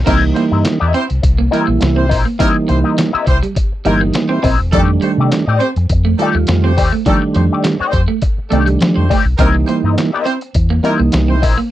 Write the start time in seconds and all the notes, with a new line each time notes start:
0.04 C2 E3 G3 A#3 C4 D#4 E4 A#4 D#5, kick, closed hi-hat, crash
0.22 muted clean electric guitar stroke
0.33 G3 A#3 E4 C5, muted clean electric guitar stroke, closed hi-hat
0.51 G2 C4 E4 A#4 D#5
0.65 muted clean electric guitar stroke, snare, clap, closed hi-hat
0.80 E2 A#3 C4 E4 G4 A#4 D#5 E5
0.93 G3 C4 E4 C5, muted clean electric guitar stroke, closed hi-hat
1.09 C2, muted clean electric guitar stroke, closed hi-hat
1.22 C2, muted clean electric guitar stroke, kick, closed hi-hat
1.38 A#3, muted clean electric guitar stroke
1.51 E3 G3 A#3 C4 E4 A#4 D#5, muted clean electric guitar stroke, closed hi-hat
1.67 A#1 A#3, muted clean electric guitar stroke
1.80 C2, muted clean electric guitar stroke, snare, clap, closed hi-hat
1.96 G3 C4 E4 C5, muted clean electric guitar stroke
2.09 A#1 C4 E4 A#4 D#5, muted clean electric guitar stroke, kick, open hi-hat
2.25 A#3, muted clean electric guitar stroke
2.39 E3 G3 A#3 C4 D#4 E4 A#4 D#5, kick, closed hi-hat
2.54 muted clean electric guitar stroke
2.68 C2 G3 A#3 E4 C5, muted clean electric guitar stroke, closed hi-hat
2.84 C4 E4 A#4 D#5
2.98 A#3, muted clean electric guitar stroke, snare, clap, closed hi-hat
3.13 A#3 C4 E4 G4 A#4 D#5 E5, muted fingered electric bass stroke
3.27 C2 G3 E4 C5, muted clean electric guitar stroke, kick, closed hi-hat
3.42 G3, muted clean electric guitar stroke, closed hi-hat
3.56 muted clean electric guitar stroke, kick, closed hi-hat
3.72 muted fingered electric bass stroke, muted clean electric guitar stroke
3.85 G1 E3 G3 A#3 C4 D#4 E4 A#4 D#5, closed hi-hat
4.01 A#3, muted clean electric guitar stroke
4.13 muted clean electric guitar stroke, snare, clap, closed hi-hat
4.28 G3 C4 E4 C5, muted clean electric guitar stroke
4.43 A#1 C4 E4 A#4 D#5, kick, open hi-hat
4.59 E1, muted clean electric guitar stroke
4.72 F2 D#3 F3 G3 A3 D4 D#4 G4 A4 D5, kick, closed hi-hat
4.88 muted clean electric guitar stroke
5.01 G3 A3 G4 C5, muted clean electric guitar stroke, closed hi-hat
5.18 C3 A3 D#4 G4 D5
5.32 snare, clap, closed hi-hat
5.45 A2 A3 C4 D#4 G4 A4 D5 D#5
5.58 A3 C4 G4 C5, closed hi-hat
5.76 F2, muted clean electric guitar stroke, closed hi-hat
5.89 F2, muted clean electric guitar stroke, kick, closed hi-hat
6.05 A3, muted clean electric guitar stroke
6.18 D#3 G3 A3 D4 D#4 F4 A4, muted clean electric guitar stroke, closed hi-hat
6.22 G4 D5
6.35 D#2 A3, muted clean electric guitar stroke
6.47 F2, muted clean electric guitar stroke, snare, clap, closed hi-hat
6.63 A3 C4 G4 C5, muted clean electric guitar stroke
6.77 D#2 A3 D#4 G4 D5, muted clean electric guitar stroke, kick, open hi-hat
6.92 A3, muted clean electric guitar stroke
7.06 D#3 F3 G3 A3 D4 D#4 G4 A4 D5, kick, closed hi-hat
7.22 muted clean electric guitar stroke
7.34 F2 F3 A3 G4 C5, muted clean electric guitar stroke, closed hi-hat
7.52 A3 D#4 G4 D5
7.64 G3, snare, clap, closed hi-hat
7.78 A3 C4 D#4 G4 A4 D5 D#5, muted fingered electric bass stroke
7.90 F2 A3 G4 C5, muted clean electric guitar stroke, kick, closed hi-hat
8.08 A3, muted clean electric guitar stroke
8.22 muted clean electric guitar stroke, kick, closed hi-hat
8.38 muted clean electric guitar stroke, muted fingered electric bass stroke
8.49 C2 D#3 G3 A3 C4 D4 D#4 G4 A4 D5, closed hi-hat
8.58 D4
8.66 G3, muted clean electric guitar stroke, closed hi-hat
8.81 F3, muted clean electric guitar stroke, snare, clap, closed hi-hat
8.95 F2 F3 A3 G4 C5, muted clean electric guitar stroke
9.10 A3 D#4 G4 D5, kick, open hi-hat
9.25 B1, muted clean electric guitar stroke
9.37 C2 E3 G3 A#3 C4 D#4 E4 A#4 D#5, kick, closed hi-hat
9.55 muted clean electric guitar stroke
9.66 G3 A#3 E4 C5, muted clean electric guitar stroke, closed hi-hat
9.84 G2 C4 E4 A#4 D#5
9.98 muted clean electric guitar stroke, snare, clap, closed hi-hat
10.11 A#3 C4 E4 G4 A#4 D#5 E5
10.24 G3 C4 E4 C5, muted clean electric guitar stroke, closed hi-hat
10.41 muted clean electric guitar stroke, closed hi-hat
10.54 E2, muted clean electric guitar stroke, kick, closed hi-hat
10.70 A#3, muted clean electric guitar stroke
10.83 E3 G3 A#3 C4 E4 A#4 D#5, muted clean electric guitar stroke, closed hi-hat
10.90 D#4
10.99 C2 A#3, muted clean electric guitar stroke
11.12 C2, muted clean electric guitar stroke, snare, clap, closed hi-hat
11.28 G3 C4 E4 C5, muted clean electric guitar stroke
11.42 A#1 C4 E4 A#4 D#5, muted clean electric guitar stroke, kick, open hi-hat
11.58 A#3, muted clean electric guitar stroke